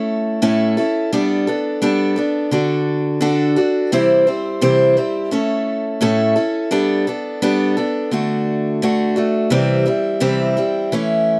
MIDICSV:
0, 0, Header, 1, 2, 480
1, 0, Start_track
1, 0, Key_signature, 1, "major"
1, 0, Tempo, 700117
1, 761, Time_signature, 4, 2, 24, 8
1, 7814, End_track
2, 0, Start_track
2, 0, Title_t, "Steel-string acoustic guitar"
2, 0, Program_c, 0, 25
2, 0, Note_on_c, 0, 57, 73
2, 0, Note_on_c, 0, 61, 67
2, 0, Note_on_c, 0, 64, 76
2, 0, Note_on_c, 0, 69, 75
2, 282, Note_off_c, 0, 57, 0
2, 282, Note_off_c, 0, 61, 0
2, 285, Note_off_c, 0, 64, 0
2, 287, Note_on_c, 0, 45, 80
2, 288, Note_off_c, 0, 69, 0
2, 289, Note_on_c, 0, 57, 89
2, 290, Note_on_c, 0, 61, 95
2, 293, Note_on_c, 0, 64, 91
2, 296, Note_on_c, 0, 69, 93
2, 521, Note_off_c, 0, 69, 0
2, 524, Note_off_c, 0, 45, 0
2, 525, Note_off_c, 0, 57, 0
2, 525, Note_off_c, 0, 61, 0
2, 527, Note_off_c, 0, 64, 0
2, 529, Note_on_c, 0, 69, 58
2, 535, Note_on_c, 0, 64, 54
2, 542, Note_on_c, 0, 61, 48
2, 765, Note_off_c, 0, 69, 0
2, 768, Note_off_c, 0, 64, 0
2, 770, Note_off_c, 0, 61, 0
2, 771, Note_on_c, 0, 55, 77
2, 772, Note_on_c, 0, 62, 87
2, 773, Note_on_c, 0, 59, 83
2, 779, Note_on_c, 0, 69, 96
2, 1002, Note_off_c, 0, 69, 0
2, 1006, Note_off_c, 0, 55, 0
2, 1006, Note_off_c, 0, 62, 0
2, 1007, Note_off_c, 0, 59, 0
2, 1010, Note_on_c, 0, 69, 55
2, 1017, Note_on_c, 0, 59, 50
2, 1022, Note_on_c, 0, 62, 44
2, 1241, Note_off_c, 0, 62, 0
2, 1244, Note_off_c, 0, 59, 0
2, 1245, Note_off_c, 0, 69, 0
2, 1245, Note_on_c, 0, 55, 84
2, 1250, Note_on_c, 0, 62, 86
2, 1252, Note_on_c, 0, 59, 84
2, 1258, Note_on_c, 0, 69, 91
2, 1473, Note_off_c, 0, 69, 0
2, 1482, Note_on_c, 0, 69, 58
2, 1483, Note_off_c, 0, 55, 0
2, 1483, Note_off_c, 0, 59, 0
2, 1485, Note_off_c, 0, 62, 0
2, 1491, Note_on_c, 0, 59, 53
2, 1498, Note_on_c, 0, 62, 50
2, 1721, Note_off_c, 0, 62, 0
2, 1721, Note_off_c, 0, 69, 0
2, 1724, Note_on_c, 0, 50, 68
2, 1725, Note_off_c, 0, 59, 0
2, 1729, Note_on_c, 0, 62, 79
2, 1732, Note_on_c, 0, 66, 77
2, 1734, Note_on_c, 0, 69, 76
2, 2190, Note_off_c, 0, 50, 0
2, 2197, Note_off_c, 0, 62, 0
2, 2198, Note_off_c, 0, 66, 0
2, 2198, Note_on_c, 0, 50, 87
2, 2200, Note_off_c, 0, 69, 0
2, 2206, Note_on_c, 0, 62, 89
2, 2206, Note_on_c, 0, 66, 93
2, 2209, Note_on_c, 0, 69, 100
2, 2435, Note_off_c, 0, 69, 0
2, 2439, Note_off_c, 0, 50, 0
2, 2442, Note_off_c, 0, 62, 0
2, 2443, Note_off_c, 0, 66, 0
2, 2443, Note_on_c, 0, 69, 67
2, 2449, Note_on_c, 0, 66, 56
2, 2456, Note_on_c, 0, 62, 49
2, 2681, Note_off_c, 0, 69, 0
2, 2684, Note_off_c, 0, 66, 0
2, 2687, Note_off_c, 0, 62, 0
2, 2688, Note_on_c, 0, 48, 82
2, 2690, Note_on_c, 0, 52, 92
2, 2690, Note_on_c, 0, 55, 84
2, 2693, Note_on_c, 0, 60, 97
2, 2694, Note_on_c, 0, 64, 90
2, 2697, Note_on_c, 0, 72, 99
2, 2917, Note_off_c, 0, 72, 0
2, 2920, Note_off_c, 0, 64, 0
2, 2923, Note_off_c, 0, 48, 0
2, 2924, Note_off_c, 0, 55, 0
2, 2925, Note_off_c, 0, 52, 0
2, 2925, Note_on_c, 0, 72, 60
2, 2926, Note_off_c, 0, 60, 0
2, 2928, Note_on_c, 0, 64, 55
2, 2935, Note_on_c, 0, 60, 50
2, 2937, Note_on_c, 0, 55, 44
2, 3160, Note_off_c, 0, 55, 0
2, 3161, Note_off_c, 0, 60, 0
2, 3162, Note_off_c, 0, 64, 0
2, 3162, Note_off_c, 0, 72, 0
2, 3163, Note_on_c, 0, 48, 86
2, 3166, Note_on_c, 0, 52, 88
2, 3168, Note_on_c, 0, 55, 91
2, 3169, Note_on_c, 0, 60, 99
2, 3170, Note_on_c, 0, 64, 97
2, 3174, Note_on_c, 0, 72, 96
2, 3397, Note_off_c, 0, 72, 0
2, 3401, Note_off_c, 0, 48, 0
2, 3401, Note_off_c, 0, 64, 0
2, 3402, Note_off_c, 0, 52, 0
2, 3404, Note_off_c, 0, 55, 0
2, 3404, Note_off_c, 0, 60, 0
2, 3405, Note_on_c, 0, 72, 58
2, 3409, Note_on_c, 0, 64, 58
2, 3413, Note_on_c, 0, 60, 51
2, 3415, Note_on_c, 0, 55, 51
2, 3640, Note_off_c, 0, 55, 0
2, 3642, Note_off_c, 0, 72, 0
2, 3643, Note_on_c, 0, 57, 74
2, 3644, Note_off_c, 0, 64, 0
2, 3646, Note_off_c, 0, 60, 0
2, 3648, Note_on_c, 0, 61, 74
2, 3651, Note_on_c, 0, 64, 75
2, 3656, Note_on_c, 0, 69, 73
2, 4115, Note_off_c, 0, 57, 0
2, 4116, Note_off_c, 0, 61, 0
2, 4118, Note_on_c, 0, 45, 88
2, 4120, Note_off_c, 0, 64, 0
2, 4121, Note_off_c, 0, 69, 0
2, 4123, Note_on_c, 0, 57, 91
2, 4124, Note_on_c, 0, 61, 92
2, 4129, Note_on_c, 0, 64, 102
2, 4129, Note_on_c, 0, 69, 102
2, 4351, Note_off_c, 0, 69, 0
2, 4358, Note_off_c, 0, 45, 0
2, 4358, Note_off_c, 0, 64, 0
2, 4359, Note_on_c, 0, 69, 60
2, 4361, Note_off_c, 0, 57, 0
2, 4361, Note_off_c, 0, 61, 0
2, 4366, Note_on_c, 0, 64, 55
2, 4374, Note_on_c, 0, 61, 51
2, 4599, Note_off_c, 0, 61, 0
2, 4599, Note_off_c, 0, 69, 0
2, 4599, Note_on_c, 0, 55, 86
2, 4602, Note_off_c, 0, 64, 0
2, 4602, Note_on_c, 0, 62, 90
2, 4607, Note_on_c, 0, 59, 86
2, 4608, Note_on_c, 0, 69, 92
2, 4839, Note_off_c, 0, 55, 0
2, 4840, Note_off_c, 0, 62, 0
2, 4840, Note_off_c, 0, 69, 0
2, 4843, Note_off_c, 0, 59, 0
2, 4848, Note_on_c, 0, 69, 62
2, 4853, Note_on_c, 0, 59, 54
2, 4859, Note_on_c, 0, 62, 48
2, 5080, Note_off_c, 0, 62, 0
2, 5082, Note_off_c, 0, 59, 0
2, 5083, Note_off_c, 0, 69, 0
2, 5088, Note_on_c, 0, 55, 87
2, 5088, Note_on_c, 0, 62, 86
2, 5091, Note_on_c, 0, 59, 96
2, 5095, Note_on_c, 0, 69, 103
2, 5318, Note_off_c, 0, 69, 0
2, 5323, Note_off_c, 0, 55, 0
2, 5323, Note_off_c, 0, 62, 0
2, 5325, Note_off_c, 0, 59, 0
2, 5326, Note_on_c, 0, 69, 57
2, 5332, Note_on_c, 0, 59, 49
2, 5336, Note_on_c, 0, 62, 45
2, 5562, Note_off_c, 0, 69, 0
2, 5563, Note_off_c, 0, 62, 0
2, 5563, Note_on_c, 0, 50, 67
2, 5565, Note_off_c, 0, 59, 0
2, 5567, Note_on_c, 0, 57, 65
2, 5571, Note_on_c, 0, 62, 66
2, 5577, Note_on_c, 0, 66, 80
2, 6041, Note_off_c, 0, 50, 0
2, 6043, Note_off_c, 0, 57, 0
2, 6045, Note_off_c, 0, 62, 0
2, 6048, Note_off_c, 0, 66, 0
2, 6049, Note_on_c, 0, 50, 90
2, 6055, Note_on_c, 0, 62, 88
2, 6057, Note_on_c, 0, 57, 91
2, 6060, Note_on_c, 0, 66, 90
2, 6272, Note_off_c, 0, 66, 0
2, 6279, Note_off_c, 0, 62, 0
2, 6280, Note_on_c, 0, 66, 62
2, 6284, Note_off_c, 0, 50, 0
2, 6285, Note_off_c, 0, 57, 0
2, 6287, Note_on_c, 0, 62, 54
2, 6293, Note_on_c, 0, 57, 52
2, 6515, Note_on_c, 0, 48, 84
2, 6518, Note_on_c, 0, 52, 81
2, 6520, Note_off_c, 0, 66, 0
2, 6521, Note_off_c, 0, 57, 0
2, 6523, Note_off_c, 0, 62, 0
2, 6524, Note_on_c, 0, 55, 90
2, 6526, Note_on_c, 0, 60, 100
2, 6528, Note_on_c, 0, 64, 95
2, 6749, Note_off_c, 0, 64, 0
2, 6756, Note_off_c, 0, 60, 0
2, 6758, Note_off_c, 0, 48, 0
2, 6758, Note_on_c, 0, 64, 63
2, 6759, Note_off_c, 0, 52, 0
2, 6762, Note_off_c, 0, 55, 0
2, 6764, Note_on_c, 0, 60, 51
2, 6772, Note_on_c, 0, 55, 51
2, 6993, Note_off_c, 0, 64, 0
2, 6994, Note_off_c, 0, 55, 0
2, 6995, Note_off_c, 0, 60, 0
2, 6996, Note_on_c, 0, 48, 82
2, 6999, Note_on_c, 0, 52, 90
2, 7002, Note_on_c, 0, 64, 103
2, 7003, Note_on_c, 0, 55, 95
2, 7003, Note_on_c, 0, 60, 93
2, 7237, Note_off_c, 0, 64, 0
2, 7238, Note_off_c, 0, 48, 0
2, 7240, Note_off_c, 0, 52, 0
2, 7242, Note_off_c, 0, 55, 0
2, 7242, Note_off_c, 0, 60, 0
2, 7245, Note_on_c, 0, 64, 57
2, 7252, Note_on_c, 0, 60, 53
2, 7258, Note_on_c, 0, 55, 42
2, 7484, Note_off_c, 0, 64, 0
2, 7487, Note_off_c, 0, 60, 0
2, 7488, Note_on_c, 0, 52, 78
2, 7490, Note_off_c, 0, 55, 0
2, 7493, Note_on_c, 0, 57, 67
2, 7495, Note_on_c, 0, 61, 82
2, 7501, Note_on_c, 0, 64, 84
2, 7814, Note_off_c, 0, 52, 0
2, 7814, Note_off_c, 0, 57, 0
2, 7814, Note_off_c, 0, 61, 0
2, 7814, Note_off_c, 0, 64, 0
2, 7814, End_track
0, 0, End_of_file